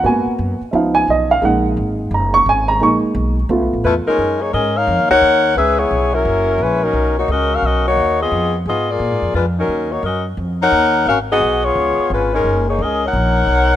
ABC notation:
X:1
M:4/4
L:1/8
Q:"Swing" 1/4=174
K:F#
V:1 name="Saxophone section"
z8 | z8 | z6 [=A,=E^EB] [G,CD^A]- | [G,CDA] [A,DGc] [CGAd] [DAce]2 [DAcf]3 |
[CGB=e] [B,=EGc]2 [F,CEA]3 [G,CEB] [F,CDA]- | [F,CDA] [A,DFc] [CFAd] [CFAe] [CFAd] [A,DFc]2 [B,EGd]- | [B,EGd] z [_C=F_Ad] [^A,F_A=d]3 [G,=DEB] [^F,^C^D^A]- | [F,CDA] [A,DFc] [CFAd] z2 [DAcf]3 |
[CFAe] [B,FGd]2 [B,EGc]3 [G,CEB] [G,CDA]- | [G,CDA] [A,DGc] [CGAd] [DAcf]4- [DAcf] |]
V:2 name="Grand piano"
g z3 [=e^e] g d e | f z3 a c' g a | c' z6 z | z8 |
z8 | z8 | z8 | z8 |
z8 | z8 |]
V:3 name="Grand piano"
[A,B,F]3 z [E,B,D]3 z | [G,A,D]8 | [G,A,D]3 z [=A,B,E]4 | z8 |
z8 | z8 | z8 | z8 |
z8 | z8 |]
V:4 name="Upright bass" clef=bass
G,, z F,, z C,,2 B,,,2 | A,,,2 G,,,2 F,,,2 G,,,2 | A,,, z B,,,2 (3C,, B,,, =A,,, =E,, z | F,,2 G,,2 (3E,, D,, C,, D,,2 |
C,,2 B,,,2 F,,,2 A,,,2 | B,,,2 C,,2 B,,,2 D,,2 | =F,,2 _A,,2 (3^A,, G,, E,, E,,2 | D,,2 F,,2 E,,2 D,,2 |
G,,,2 B,,,2 C,, z G,,,2 | F,,,2 C,,2 A,,,2 B,,,2 |]